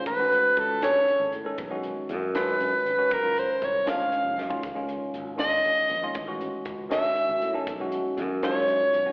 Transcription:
0.06 fingered electric bass A1, soprano saxophone B4, kick, closed hi-hat
0.18 tine electric piano D#3 G#3 C#4 F#4
0.32 closed hi-hat
0.44 muted fingered electric bass stroke
0.57 fingered electric bass C#2, soprano saxophone A4, kick, closed hi-hat
0.81 tine electric piano D#3 C#4 G#4 A4, soprano saxophone C#5, snare, closed hi-hat
1.08 muted fingered electric bass stroke, closed hi-hat
1.20 fingered electric bass G#1
1.32 fingered electric bass A2, closed hi-hat
1.44 tine electric piano D#3 G#3 C#4 A4, muted fingered electric bass stroke
1.58 fingered electric bass B1, kick, closed hi-hat
1.69 tine electric piano D#3 G#3 C#4 F#4
1.83 closed hi-hat
1.97 muted fingered electric bass stroke
2.09 fingered electric bass F#2, closed hi-hat
2.34 tine electric piano D#3 G#3 C#4 F4, soprano saxophone B4, snare, closed hi-hat
2.60 fingered electric bass F#2, closed hi-hat
2.86 fingered electric bass G#1, closed hi-hat
2.97 tine electric piano D#3 G#3 C#4 F#4
3.11 fingered electric bass F#1, soprano saxophone A#4, kick, closed hi-hat
3.22 tine electric piano D#3 G#3 C#4 F4
3.37 soprano saxophone C5, closed hi-hat
3.49 muted fingered electric bass stroke
3.62 fingered electric bass C2, soprano saxophone C#5, kick, closed hi-hat
3.85 tine electric piano D#3 G#3 C#4 F4, snare, closed hi-hat
3.89 soprano saxophone F5
4.12 muted fingered electric bass stroke, closed hi-hat
4.25 fingered electric bass F1
4.38 fingered electric bass F#2, snare
4.48 tine electric piano D#3 G#3 C#4 F4, kick
4.63 fingered electric bass C#2, kick, closed hi-hat
4.75 tine electric piano D#3 G#3 C#4 F4
4.89 closed hi-hat
5.01 muted fingered electric bass stroke
5.14 fingered electric bass G#1, closed hi-hat
5.36 tine electric piano D#3 G#3 C#4 F4, soprano saxophone D#5, snare, closed hi-hat
5.64 fingered electric bass G#1, closed hi-hat
5.90 fingered electric bass A#1, closed hi-hat
6.02 tine electric piano D#3 G#3 C#4 F4
6.15 fingered electric bass A1, kick, closed hi-hat
6.26 tine electric piano D#3 G#3 C#4 F#4
6.41 closed hi-hat
6.65 fingered electric bass C#2, kick, closed hi-hat
6.89 tine electric piano D#3 G#3 C#4 F#4, soprano saxophone E5, snare, closed hi-hat
7.16 muted fingered electric bass stroke, closed hi-hat
7.29 fingered electric bass G#1
7.42 fingered electric bass A2, closed hi-hat
7.53 tine electric piano D#3 G#3 C#4 A4, muted fingered electric bass stroke
7.67 fingered electric bass B1, kick, closed hi-hat
7.79 tine electric piano D#3 G#3 C#4 F#4
7.92 closed hi-hat
8.04 muted fingered electric bass stroke
8.17 fingered electric bass F#2, closed hi-hat
8.43 tine electric piano D#3 G#3 C#4 F4, soprano saxophone C#5, snare, closed hi-hat
8.67 fingered electric bass F#2, closed hi-hat
8.93 fingered electric bass B1, closed hi-hat
9.05 tine electric piano D#3 G#3 C#4 F#4

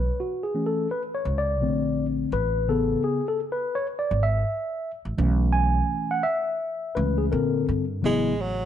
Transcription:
Already playing: tine electric piano B4
0.20 tine electric piano F#4
0.43 tine electric piano G#4
0.55 tine electric piano E3 A3 C#4
0.66 tine electric piano A4
0.91 tine electric piano B4
1.15 tine electric piano C#5
1.25 upright bass C#2
1.38 tine electric piano D5
1.61 upright bass A#1, tine electric piano D3 A3 C4
2.32 upright bass A1, tine electric piano B4
2.68 tine electric piano C#3 B3 G#4 A4
3.04 tine electric piano G#4
3.28 tine electric piano A4
3.52 tine electric piano B4
3.75 tine electric piano C#5
3.99 tine electric piano D5
4.11 upright bass G#1
4.23 tine electric piano E5
5.05 upright bass A1
5.18 upright bass B1, tine electric piano E3 A3 C#4
5.53 tine electric piano G#5
6.11 tine electric piano F#5
6.23 tine electric piano E5
6.95 upright bass C#2, tine electric piano E3 A3 C#4 B4
7.18 tine electric piano G#4
7.32 upright bass A#2, tine electric piano D3 C4 A4 A#4
7.68 upright bass G2
8.02 upright bass A1, tine electric piano C#3 F#3 B3 E4, tenor saxophone G#3
8.42 tenor saxophone F#3

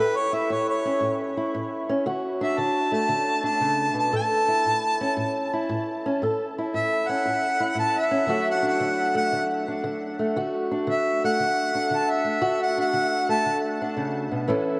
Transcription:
Already playing: steel-string acoustic guitar A2
0.00 steel-string acoustic guitar A4, harmonica B4
0.16 harmonica C#5
0.33 steel-string acoustic guitar E4, harmonica E5
0.50 steel-string acoustic guitar A2, harmonica C#5
0.69 harmonica C#5
0.85 steel-string acoustic guitar C#4
1.01 steel-string acoustic guitar A2
1.37 steel-string acoustic guitar E4
1.55 steel-string acoustic guitar A2
1.89 steel-string acoustic guitar C#4
2.06 steel-string acoustic guitar D3 F#4
2.41 steel-string acoustic guitar D4, harmonica E5
2.58 steel-string acoustic guitar D3, harmonica A5
2.92 steel-string acoustic guitar A3, harmonica A5
3.09 steel-string acoustic guitar D3
3.44 steel-string acoustic guitar D4, harmonica A5
3.61 steel-string acoustic guitar C#3
3.94 steel-string acoustic guitar B2
3.99 harmonica A5
4.12 steel-string acoustic guitar A2 A4, harmonica A5
4.48 steel-string acoustic guitar E4
4.65 steel-string acoustic guitar A2
5.01 steel-string acoustic guitar C#4
5.17 steel-string acoustic guitar A2
5.53 steel-string acoustic guitar E4
5.69 steel-string acoustic guitar A2
6.06 steel-string acoustic guitar C#4
6.22 steel-string acoustic guitar A2 A4
6.58 steel-string acoustic guitar E4
6.74 steel-string acoustic guitar A2, harmonica E5
7.08 steel-string acoustic guitar C#4, harmonica F#5
7.25 steel-string acoustic guitar A2
7.60 steel-string acoustic guitar E4
7.75 steel-string acoustic guitar A2
7.80 harmonica A5
7.98 harmonica E5
8.11 steel-string acoustic guitar C#4
8.27 steel-string acoustic guitar D3 F#3 A3 D4 F#4
8.51 harmonica F#5
8.63 steel-string acoustic guitar D4
8.67 harmonica F#5
8.80 steel-string acoustic guitar D3
9.15 steel-string acoustic guitar A3, harmonica F#5
9.32 steel-string acoustic guitar D3
9.68 steel-string acoustic guitar D4
9.84 steel-string acoustic guitar D3
10.19 steel-string acoustic guitar A3
10.36 steel-string acoustic guitar D3 F#4
10.72 steel-string acoustic guitar D4
10.87 steel-string acoustic guitar D3, harmonica E5
11.24 steel-string acoustic guitar A3, harmonica F#5
11.40 steel-string acoustic guitar D3
11.75 steel-string acoustic guitar D4
11.91 steel-string acoustic guitar D3
11.96 harmonica A5
12.10 harmonica E5
12.24 steel-string acoustic guitar A3
12.42 steel-string acoustic guitar D3 F#4
12.62 harmonica F#5
12.78 steel-string acoustic guitar D4, harmonica F#5
12.93 steel-string acoustic guitar D3
13.29 steel-string acoustic guitar A3, harmonica A5
13.46 steel-string acoustic guitar D3
13.82 steel-string acoustic guitar D4
13.96 steel-string acoustic guitar C#3
14.32 steel-string acoustic guitar B2
14.47 steel-string acoustic guitar A2 E3 C#4 E4 A4

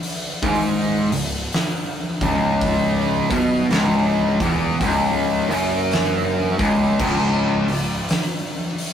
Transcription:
0.03 open hi-hat
0.42 fingered electric bass G#1, distorted electric guitar G#2, kick, open hi-hat
1.12 fingered electric bass C#1, distorted electric guitar C#2, open hi-hat
1.52 snare, open hi-hat
2.21 fingered electric bass C#1, distorted electric guitar C#2, kick, open hi-hat
2.61 kick, open hi-hat
3.30 fingered electric bass B1, distorted electric guitar B2, kick, open hi-hat
3.71 fingered electric bass C#1, distorted electric guitar C#2, snare, open hi-hat
4.40 fingered electric bass E1, distorted electric guitar E2, kick, open hi-hat
4.80 fingered electric bass C#1, distorted electric guitar C#2, kick, open hi-hat
5.49 fingered electric bass F#1, distorted electric guitar F#2, open hi-hat
5.91 snare, open hi-hat
6.59 fingered electric bass C#1, distorted electric guitar C#2, kick, open hi-hat
6.99 fingered electric bass C#1, distorted electric guitar C#2, kick, crash
7.68 fingered electric bass C#1, distorted electric guitar C#2, open hi-hat
8.09 snare, open hi-hat
8.78 open hi-hat

